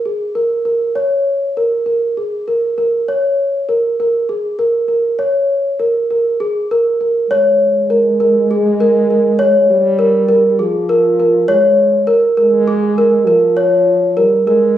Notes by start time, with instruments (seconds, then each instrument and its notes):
0.06 celesta G#4
0.35 celesta A#4
0.65 celesta A#4
0.95 celesta C#5
1.57 celesta A#4
1.86 celesta A#4
2.17 celesta G#4
2.48 celesta A#4
2.78 celesta A#4
3.08 celesta C#5
3.69 celesta A#4
4.00 celesta A#4
4.29 celesta G#4
4.59 celesta A#4
4.88 celesta A#4
5.19 celesta C#5
5.79 celesta A#4
6.11 celesta A#4
6.40 celesta G#4
6.71 celesta A#4
7.01 celesta A#4
7.30 french horn G#3, celesta C#5
7.90 celesta A#4
8.20 celesta A#4
8.51 celesta G#4
8.80 celesta A#4
9.11 celesta A#4
9.39 celesta C#5
9.70 french horn G3
9.99 celesta A#4
10.29 celesta A#4
10.59 french horn F3, celesta G#4
10.89 celesta A#4
11.20 celesta A#4
11.48 french horn G#3, celesta C#5
12.07 celesta A#4
12.37 french horn G#3, celesta A#4
12.68 celesta G#4
12.98 celesta A#4
13.27 french horn F3, celesta A#4
13.57 celesta C#5
14.17 french horn G3, celesta A#4
14.47 french horn G#3, celesta A#4